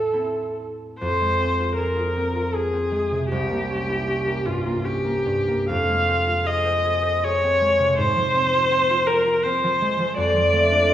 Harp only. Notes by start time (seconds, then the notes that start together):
Already playing: A2 A3
0.13 C4 E4
1.01 F2
1.21 G#3
1.40 C4
1.60 F4
1.78 G#4
1.96 F4
2.17 C4
2.35 F4
2.54 G#4
2.73 C4
2.92 G#3
3.11 C3
3.32 C2
3.49 A#3
3.70 C#4
3.89 E4
4.07 C#4
4.27 A#3
4.45 G2
4.65 A#3
4.84 C#4
5.05 A#3
5.26 G2
5.48 A#3
5.69 F2
5.89 G#3
6.08 C4
6.27 F4
6.44 G#4
6.65 C5
6.85 G#4
7.03 C5
7.24 G#4
7.43 C4
7.61 G#3
7.79 C3
7.98 G#2
8.16 F3
8.35 C4
8.54 F4
8.71 C4
8.90 F4
9.09 C4
9.26 F4
9.45 C4
9.63 F3
9.81 G#3
9.99 F3
10.17 F2
10.36 F3
10.53 A3
10.71 D4
10.89 F4